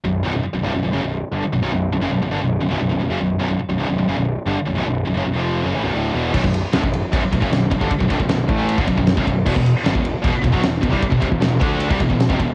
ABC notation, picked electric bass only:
X:1
M:4/4
L:1/16
Q:1/4=153
K:Bm
V:1 name="Picked electric bass" clef=bass
B,,,,2 B,,,, B,,,, z B,,,, =C,,, B,,,, B,,,, F,,, B,,,,2 z G,,, z B,,,, | B,,,, B,,,,2 B,,,, F,,, B,,,, B,,,, G,,, B,,,,2 B,,,, B,,,, B,,,, B,,,, B,,,, F,,, | B,,,,2 B,,,, B,,,, z B,,,, =C,,, B,,,, B,,,, F,,, B,,,,2 z G,,, z B,,,, | B,,,, B,,,,2 B,,,, F,,, B,,,, ^E,,,3 F,,, A,,, B,,,, D,,,2 =E,,,2 |
[K:Bphr] B,,,, B,,,,2 z D,,, B,,,,2 z B,,,, z B,,,, F,,, B,,,,2 B,,,, G,,, | z B,,,, C,,, B,,,, B,,,,2 A,,,3 G,,, B,,,, B,,,,2 C,,, B,,,,2 | E,,, E,,,2 z G,,, E,,,2 z E,,, z E,,, B,,, E,,,2 E,,, C,, | z E,,, ^E,,, =E,,, E,,,2 D,,3 C,, E,,, E,,,2 ^E,,, =E,,,2 |]